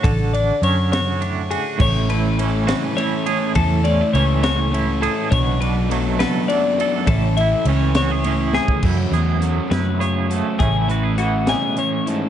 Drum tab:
CC |------------|x-----------|------------|------------|
RD |x-x-x-x-x-x-|--x-x-x-x-x-|x-x-x-x-x-x-|x-x-x-x-x-x-|
HH |------------|------------|------------|------------|
SD |------o-----|------o-----|------o-----|------o-----|
BD |o-----------|o-----------|o-----------|o-----------|

CC |------------|x-----------|------------|
RD |x-x-x-x-x---|------------|------------|
HH |------------|--x-x-x-x-x-|x-x-x-x-x-x-|
SD |------o---o-|------o-----|------o-----|
BD |o----------o|o-----------|o-----------|